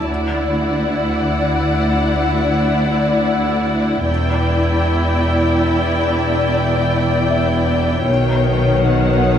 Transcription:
0.07 D2 E4 D5 F#5
4.07 E1 E2 E4 D5 G5
7.30 E5
8.07 B1 B2 D#3 C#5
8.88 F#5

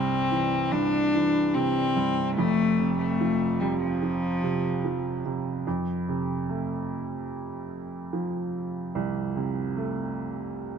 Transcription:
Already playing: C2 G2 C3 C4
0.31 E3
0.72 G2 D4
1.14 E3
1.54 C3 C4
1.96 G2
2.36 F1 F2 A3
2.79 C3
2.98 A3
3.21 F3
3.60 C3 G3
3.81 F3
4.03 F3
4.43 C3
4.84 F3
5.25 C3
5.67 F2
6.08 C3
6.49 A3
8.13 F3
8.95 C2
9.36 C3
9.77 A3

